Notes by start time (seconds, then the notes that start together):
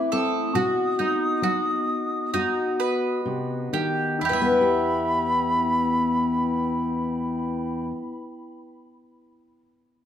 Already playing: E3 A3 C4 E4 A4 B4
0.11 C4 A4 D#6
0.55 B2 B3 F#4 D#5 F#5
0.99 D#4
1.42 F#3 F#4
2.34 F#2 D#4 F#4
2.80 B4
3.25 C3
3.73 D#3 G4
4.20 E2 E4 B4 G5 B5
4.25 G4
4.29 E3 B4 E5
4.42 B3
4.52 E4
4.61 G4